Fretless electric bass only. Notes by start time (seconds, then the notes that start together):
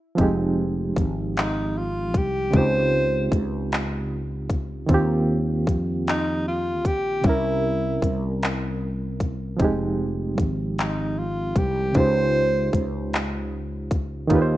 0.19 F1
0.97 G#1
2.15 C2
2.54 C#2
3.32 C#2
4.89 D#2
5.68 F2
6.86 A#1
7.25 C2
8.03 C2
9.60 F1
10.38 G#1
11.56 C2
11.96 C#2
12.74 C#2
14.30 D#2